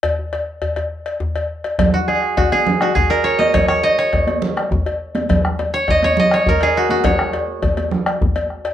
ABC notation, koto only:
X:1
M:12/8
L:1/8
Q:3/8=137
K:F#
V:1 name="Koto"
z12 | z F G2 F G2 F G A c d | c c d c6 z3 | z3 c d c d c A G F F |
c8 z4 |]